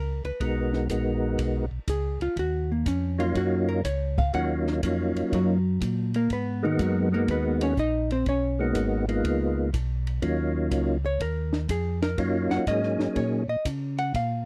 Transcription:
Already playing: tonewheel organ C#2, hollow-body jazz guitar A#4
0.24 tonewheel organ C#2, hollow-body jazz guitar B4, ride
0.40 tonewheel organ B1 G#3 B3 D#4 F#4 A#4, kick, ride
0.73 snare
0.89 tonewheel organ A#1 G#3 B3 D#4 F#4 A#4, kick, hi-hat pedal, ride
1.38 tonewheel organ B1, kick, ride
1.71 tonewheel organ B1
1.87 tonewheel organ C#2, hollow-body jazz guitar G#4, kick, hi-hat pedal, ride
2.20 tonewheel organ C#2, hollow-body jazz guitar F4, ride
2.36 tonewheel organ D#2, hollow-body jazz guitar F#4, kick, ride
2.72 hollow-body jazz guitar A#3
2.86 tonewheel organ F2, hollow-body jazz guitar C#4, kick, hi-hat pedal, ride
3.18 tonewheel organ F#3 A#3 C#4 D#4 F4, hollow-body jazz guitar F4, ride
3.35 tonewheel organ F#2, hollow-body jazz guitar F#4, kick, ride
3.69 hollow-body jazz guitar A#4
3.84 tonewheel organ C#2, hollow-body jazz guitar C#5, kick, hi-hat pedal, ride
4.18 hollow-body jazz guitar F5, kick, ride
4.33 tonewheel organ D#2 F#3 A#3 C#4 D#4 F4, hollow-body jazz guitar F#5, kick, ride
4.67 snare
4.83 tonewheel organ F2 F#3 A#3 C#4 D#4 F4, kick, hi-hat pedal, ride
5.15 tonewheel organ F2, ride
5.32 tonewheel organ F#2, hollow-body jazz guitar F#3 F#4, kick, ride
5.81 tonewheel organ A#2, kick, hi-hat pedal, ride
6.14 hollow-body jazz guitar A#3 A#4, ride
6.30 tonewheel organ G#2, hollow-body jazz guitar B3 B4, kick, ride
6.63 hollow-body jazz guitar D#3 D#4, tonewheel organ G#3 A#3 B3 D#4 F#4
6.79 tonewheel organ F#2, hollow-body jazz guitar F#3 F#4, kick, hi-hat pedal, ride
7.12 tonewheel organ G#3 A#3 B3 D#4 F#4, hollow-body jazz guitar A#3 A#4
7.28 tonewheel organ D#2, hollow-body jazz guitar B3 B4, kick, ride
7.61 hollow-body jazz guitar C#4 C#5, ride
7.77 tonewheel organ A#1, hollow-body jazz guitar D#4 D#5, kick, hi-hat pedal
8.11 hollow-body jazz guitar C4 C5, ride
8.26 tonewheel organ B1, hollow-body jazz guitar C#4 C#5, kick, ride
8.59 tonewheel organ G#3 A#3 B3 D#4 F#4
8.75 tonewheel organ G#1, kick, hi-hat pedal, ride
9.08 tonewheel organ G#3 A#3 B3 D#4 F4, ride
9.24 tonewheel organ C#2, kick, ride
9.73 tonewheel organ B1, kick, hi-hat pedal, ride
10.07 ride
10.22 tonewheel organ D#2 F#3 A#3 C#4 D#4 F4, kick, ride
10.71 tonewheel organ C#2, kick, hi-hat pedal, ride
11.06 hollow-body jazz guitar C#5
11.20 tonewheel organ D#2, hollow-body jazz guitar A#4, kick, ride
11.53 snare
11.69 tonewheel organ F2, hollow-body jazz guitar G#4, kick, hi-hat pedal, ride
12.02 hollow-body jazz guitar A#4, snare, ride
12.18 tonewheel organ F#2 F#3 A#3 C#4 D#4 F4, kick, ride
12.51 tonewheel organ F#2, hollow-body jazz guitar F#5, snare
12.66 tonewheel organ G#2 F#3 A#3 C#4 D#4 G#4, hollow-body jazz guitar D#5, kick, hi-hat pedal, ride
12.83 snare
13.00 tonewheel organ G#2, snare
13.16 tonewheel organ A#2, hollow-body jazz guitar C#5, kick, ride
13.48 tonewheel organ A#2, hollow-body jazz guitar D#5
13.65 tonewheel organ C#3, kick, hi-hat pedal, ride
13.98 hollow-body jazz guitar F#5, ride
14.14 tonewheel organ A#2, hollow-body jazz guitar F5, kick, ride

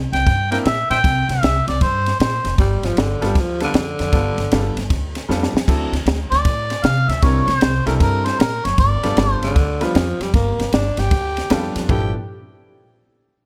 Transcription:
0.12 upright bass C2, harmonica G5, snare, ride
0.27 upright bass G2, kick, snare, ride
0.51 upright piano A#3 C4 D4 E4 A#4, harmonica G5, snare, ride
0.65 upright bass A#2, harmonica E5, snare, ride
0.90 upright bass A#2, harmonica C5 E5 G5, snare, ride
1.04 upright bass C2, kick, snare, ride
1.29 upright bass C2, harmonica E5, snare, ride
1.43 upright bass C2, snare, ride
1.68 upright bass C2, harmonica D5, snare, ride
1.81 upright bass G2, harmonica C5, kick, snare, ride
2.06 snare, ride
2.20 upright bass A#2, harmonica C5, snare, ride
2.44 upright bass F1, snare, ride
2.58 upright bass G1, tenor saxophone G3, kick, snare, ride
2.83 upright bass G1, tenor saxophone F3, snare, ride
2.97 upright bass G1, tenor saxophone D3, snare, ride
3.21 upright bass G1, upright piano G3 B3 D4 F4 A4, snare, ride
3.25 tenor saxophone G3
3.35 upright bass D2, kick, snare, ride
3.40 tenor saxophone F3
3.60 tenor saxophone D3, upright piano G3 B3 D4 F4 A4, snare, ride
3.74 upright bass F2, tenor saxophone D3, snare, ride
3.99 upright bass F2, snare, ride
4.12 upright bass G1, upright piano G3 B3 D4 F4 A4, kick, snare, ride
4.38 upright bass G1, snare, ride
4.52 upright bass G1, upright piano G3 B3 D4 F4 A4, snare, ride
4.77 upright bass G1, snare, ride
4.90 upright bass D2, kick, snare, ride
5.15 snare, ride
5.28 upright bass F2, upright piano G3 B3 D4 F4 A4, snare
5.43 snare
5.54 upright bass F2, snare
5.68 upright bass D2, upright piano F#3 C4 D4 E4 A4, kick, snare, crash, ride
5.92 upright bass D2, snare, ride
6.06 upright bass D2, snare, ride
6.31 upright bass D2, harmonica D5, snare, ride
6.45 upright bass A2, kick, snare, ride
6.70 snare, ride
6.83 upright bass C3, harmonica F5, snare, ride
7.08 upright bass D2, harmonica E5, snare, ride
7.22 upright bass C2, upright piano G3 C4 D4 E4 A#4, harmonica C#5, kick, snare, ride
7.48 upright bass C2, harmonica C5, snare, ride
7.61 upright bass C2, snare, ride
7.86 upright bass C2, upright piano G3 C4 D4 E4 A4, harmonica A#4, snare, ride
8.00 upright bass G2, harmonica A#4, kick, snare, ride
8.25 harmonica C5, snare, ride
8.39 upright bass A#2, harmonica A#4, snare, ride
8.65 upright bass F#1, harmonica C#5, snare, ride
8.78 upright bass G1, harmonica D5, kick, snare, ride
9.03 upright bass G1, upright piano G3 B3 D4 F4 A4, snare, ride
9.17 upright bass G1, snare, ride
9.32 harmonica C5
9.42 upright bass G1, tenor saxophone D3, snare, ride
9.56 upright bass D2, kick, snare, ride
9.81 tenor saxophone F3, upright piano G3 B3 D4 F4 B4, snare, ride
9.95 upright bass F2, snare, ride
10.20 upright bass F2, tenor saxophone G3, snare, ride
10.34 upright bass G1, tenor saxophone A#3, kick, snare, ride
10.59 upright bass G1, snare, ride
10.73 upright bass G1, tenor saxophone D4, snare, ride
10.97 upright bass G1, tenor saxophone G4, snare, ride
11.11 upright bass D2, kick, snare, ride
11.37 snare, ride
11.50 upright bass F2, upright piano G3 B3 D4 F4 A4, snare, ride
11.75 upright bass F2, snare, ride
11.89 upright bass G1, upright piano F3 B3 D4 E4 A4, tenor saxophone G4, kick, floor tom, ride bell

